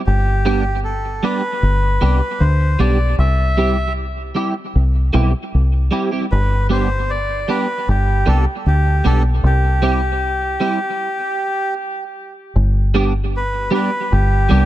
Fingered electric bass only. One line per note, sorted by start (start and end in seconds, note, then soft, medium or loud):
0.07 1.20 G1 medium
1.63 1.98 G1 medium
2.02 2.20 C2 medium
2.41 2.76 D2 loud
2.80 3.15 B1 medium
3.19 4.31 C2 medium
4.76 5.10 C2 medium
5.15 5.32 B1 loud
5.55 5.89 C2 medium
6.32 7.44 G1 medium
7.89 8.23 G1 loud
8.28 8.45 C2 medium
8.66 9.01 D2 medium
9.06 9.40 B1 medium
9.44 10.56 C2 loud
12.56 13.68 G1 medium
14.13 14.47 G1 loud
14.51 14.65 C2 loud